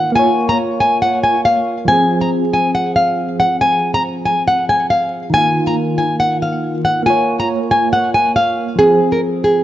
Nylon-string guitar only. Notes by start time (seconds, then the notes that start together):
Already playing: F#5
0.15 G#5
0.49 A#5
0.80 G#5
1.02 F#5
1.23 G#5
1.45 F5
1.88 G#5
2.21 A#5
2.53 G#5
2.75 F#5
2.96 F5
3.40 F#5
3.61 G#5
3.94 A#5
4.25 G#5
4.48 F#5
4.69 G#5
4.90 F5
5.34 G#5
5.67 A#5
5.98 G#5
6.20 F#5
6.42 F5
6.85 F#5
7.06 G#5
7.40 A#5
7.71 G#5
7.93 F#5
8.14 G#5
8.36 F5
8.79 G#4
9.12 A#4
9.44 G#4